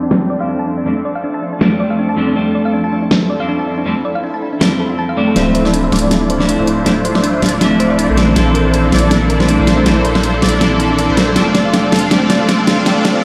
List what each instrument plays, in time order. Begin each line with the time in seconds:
Already playing: clean electric guitar F2 G3 C4 D4, ambient pad F3 A3 C4 D4 A4
0.03 synth arpeggio sound D4
0.11 synth arpeggio sound D4, snare
0.30 synth arpeggio sound D5
0.38 clean electric guitar F2 G3 C4, synth arpeggio sound F5
0.42 clean electric guitar D4
0.49 synth arpeggio sound D4
0.59 synth arpeggio sound A5
0.68 synth arpeggio sound D4
0.78 synth arpeggio sound D4
0.85 clean electric guitar F2 G3 A3 C4 D4, synth arpeggio sound D4
1.05 synth arpeggio sound D5
1.15 synth arpeggio sound F5
1.24 synth arpeggio sound D4
1.34 synth arpeggio sound A5
1.43 synth arpeggio sound D4
1.53 synth arpeggio sound D4
1.59 clean electric guitar F2 G3 A3 D4, synth arpeggio sound D4, snare
1.80 synth arpeggio sound D5
1.90 synth arpeggio sound F5
1.99 synth arpeggio sound D4
2.09 synth arpeggio sound A5
2.16 clean electric guitar F2 G3 A3 C4 D4, synth arpeggio sound D4
2.28 synth arpeggio sound D4
2.34 clean electric guitar F2 G3 A3, synth arpeggio sound D4, ambient pad E4
2.38 clean electric guitar D4
2.55 synth arpeggio sound D5
2.65 synth arpeggio sound F5
2.73 synth arpeggio sound D4
2.84 synth arpeggio sound A5
2.92 synth arpeggio sound D4
3.03 synth arpeggio sound D4
3.11 synth arpeggio sound D4, snare
3.30 synth arpeggio sound D5
3.38 clean electric guitar F2 G3 C4, synth arpeggio sound F5
3.42 clean electric guitar D4
3.49 synth arpeggio sound D4
3.59 synth arpeggio sound A5
3.67 synth arpeggio sound D4
3.78 synth arpeggio sound D4
3.85 clean electric guitar F2 G3 A3 C4 D4, synth arpeggio sound D4
4.05 synth arpeggio sound D5
4.15 synth arpeggio sound F5
4.24 synth arpeggio sound D4
4.34 synth arpeggio sound A5
4.42 synth arpeggio sound D4
4.53 synth arpeggio sound D4
4.59 clean electric guitar F2 G3 C4 D4, synth arpeggio sound D4, snare
4.80 synth arpeggio sound A4
4.90 synth arpeggio sound F4
4.99 synth arpeggio sound A5
5.09 synth arpeggio sound F5
5.16 clean electric guitar F2 G3 A3 C4 D4, synth arpeggio sound D5
5.28 synth arpeggio sound A4
5.34 sub bass D1, clean electric guitar F3 A3 C4, ambient pad F3 D5 E5 C6, supersaw synth A3 D4 E4 F4 C5, synth arpeggio sound D4, snare, closed hi-hat
5.38 clean electric guitar E5
5.55 synth arpeggio sound C5, closed hi-hat
5.65 synth arpeggio sound D5, snare
5.74 synth arpeggio sound D4, closed hi-hat
5.84 synth arpeggio sound E5
5.92 sub bass D1, supersaw synth A3 D4 E4 F4 D5, synth arpeggio sound D4, snare, closed hi-hat
5.96 closed hi-hat
5.99 closed hi-hat
6.03 synth arpeggio sound D4
6.11 synth arpeggio sound D4, snare, closed hi-hat
6.30 synth arpeggio sound C5, closed hi-hat
6.38 clean electric guitar F3 A3 C4 E4, synth arpeggio sound D5, snare
6.49 synth arpeggio sound D4, closed hi-hat
6.59 sub bass D1, supersaw synth A3 D4 E4 F4 C5, synth arpeggio sound E5
6.67 synth arpeggio sound D4, closed hi-hat
6.78 synth arpeggio sound D4
6.85 sub bass D1, clean electric guitar F3 A3 C4 D4, supersaw synth A3 D4 E4 F4 C5, synth arpeggio sound D4, snare, closed hi-hat
7.05 synth arpeggio sound C5, closed hi-hat
7.15 synth arpeggio sound D5, snare
7.23 synth arpeggio sound D4, closed hi-hat
7.34 synth arpeggio sound E5
7.42 sub bass D1, supersaw synth A3 D4 E4 F4 D5, synth arpeggio sound D4, snare, closed hi-hat
7.46 closed hi-hat
7.49 closed hi-hat
7.53 synth arpeggio sound D4
7.59 clean electric guitar F3 A3 C4 E5, synth arpeggio sound D4, snare, closed hi-hat
7.80 synth arpeggio sound C5, closed hi-hat
7.90 synth arpeggio sound D5
7.98 synth arpeggio sound D4, closed hi-hat
8.09 sub bass A#1, supersaw synth A#3 D4 E4 A4 C5, synth arpeggio sound E5
8.16 clean electric guitar E3 A3 C4 D4, synth arpeggio sound D4, ambient pad A4, snare, closed hi-hat
8.28 synth arpeggio sound D4
8.34 sub bass A#1, clean electric guitar E3 C4 D4 A4, supersaw synth A#3 D4 E4 A4 C5, synth arpeggio sound D4, snare, closed hi-hat
8.55 synth arpeggio sound A#4, closed hi-hat
8.65 synth arpeggio sound C5
8.73 synth arpeggio sound D4, closed hi-hat
8.84 synth arpeggio sound D5
8.92 sub bass A#1, supersaw synth A#3 D4 E4 A4 D5, synth arpeggio sound D4, snare, closed hi-hat
8.96 closed hi-hat
8.98 closed hi-hat
9.03 synth arpeggio sound D4
9.11 synth arpeggio sound D4, snare, closed hi-hat
9.30 synth arpeggio sound A#4, closed hi-hat
9.38 clean electric guitar E3 A3 C4, synth arpeggio sound C5, snare
9.42 clean electric guitar D4
9.49 synth arpeggio sound D4, closed hi-hat
9.59 sub bass A#1, supersaw synth A#3 D4 E4 A4 C5, synth arpeggio sound D5
9.67 synth arpeggio sound D4, snare, closed hi-hat
9.78 synth arpeggio sound D4
9.85 sub bass A#1, clean electric guitar E3 A3 C4 D4, supersaw synth A#3 D4 E4 A4 C5, synth arpeggio sound D4, snare, closed hi-hat
10.05 synth arpeggio sound A#4, closed hi-hat
10.15 synth arpeggio sound C5, snare
10.23 synth arpeggio sound D4, closed hi-hat
10.34 synth arpeggio sound D5
10.42 sub bass A#1, supersaw synth A#3 D4 E4 A4 D5, synth arpeggio sound D4, snare, closed hi-hat
10.46 closed hi-hat
10.49 closed hi-hat
10.53 synth arpeggio sound D4
10.59 clean electric guitar E3 C4 D4 A4, synth arpeggio sound D4, snare, closed hi-hat
10.80 synth arpeggio sound E4, closed hi-hat
10.90 synth arpeggio sound D4
10.99 synth arpeggio sound D4, closed hi-hat
11.09 sub bass A#1, supersaw synth A#3 D4 E4 A4 C5
11.17 synth arpeggio sound A#4, snare, closed hi-hat
11.28 synth arpeggio sound A4
11.34 sub bass F1, clean electric guitar G3 A3 D4, supersaw synth C4 D4 F4 A4 D5, synth arpeggio sound D4, ambient pad A4 F5 C6, snare, closed hi-hat, riser
11.55 synth arpeggio sound D5, snare, closed hi-hat
11.65 synth arpeggio sound F5
11.74 synth arpeggio sound D4, snare, closed hi-hat
11.84 synth arpeggio sound A5
11.92 sub bass F1, supersaw synth C4 D4 F4 A4 F5, synth arpeggio sound D4, snare, closed hi-hat
11.96 closed hi-hat
11.99 synth arpeggio sound D4, closed hi-hat
12.09 sub bass F1, clean electric guitar G3 A3 D4, supersaw synth C4 D4 F4 A4 D5, synth arpeggio sound D4, snare, closed hi-hat
12.30 synth arpeggio sound D5, snare, closed hi-hat
12.40 synth arpeggio sound F5
12.48 synth arpeggio sound D4, snare, closed hi-hat
12.59 synth arpeggio sound A5
12.67 sub bass F1, supersaw synth C4 D4 F4 A4 F5, synth arpeggio sound D4, snare, closed hi-hat
12.78 synth arpeggio sound D4
12.84 sub bass F1, clean electric guitar G3 A3 D4, supersaw synth C4 D4 F4 A4 D5, synth arpeggio sound D4, snare, closed hi-hat
13.05 synth arpeggio sound D5, snare, closed hi-hat
13.15 synth arpeggio sound F5